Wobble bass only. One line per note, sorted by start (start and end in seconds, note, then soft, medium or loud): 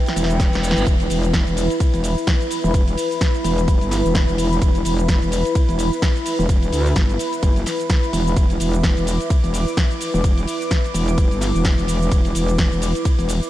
0.16 0.51 E1 loud
0.53 0.74 E1 loud
0.77 0.85 G1 loud
0.87 1.08 E1 medium
1.10 1.45 E1 loud
1.47 1.68 E1 loud
1.94 2.15 E1 loud
2.64 2.73 E1 loud
2.74 2.96 E1 medium
3.44 3.79 E1 loud
3.81 4.03 G1 loud
4.05 4.26 E1 medium
4.28 4.60 E1 loud
4.62 4.83 E1 medium
4.85 5.20 E1 loud
5.22 5.43 E1 loud
5.69 5.90 E1 loud
6.39 6.47 E1 loud
6.49 6.71 E1 loud
6.73 6.94 D2 loud
6.96 7.18 G1 loud
7.43 7.65 F#1 loud
8.13 8.35 E1 loud
8.37 8.58 E1 medium
8.60 8.95 E1 loud
8.97 9.18 E1 loud
9.44 9.65 E1 loud
10.14 10.22 E1 loud
10.24 10.46 E1 medium
10.94 11.29 E1 loud
11.31 11.53 G1 loud
11.55 11.76 E1 loud
11.78 12.10 E1 loud
12.12 12.33 E1 loud
12.35 12.70 E1 loud
12.72 12.93 E1 loud
13.19 13.40 E1 loud